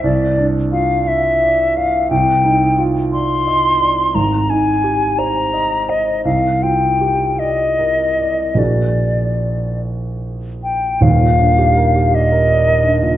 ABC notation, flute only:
X:1
M:6/8
L:1/8
Q:3/8=56
K:Dphr
V:1 name="Flute"
d2 f =e2 f | [K:Eb] g2 z c'3 | b a2 b2 e | f g2 e3 |
d3 z2 g | f3 e3 |]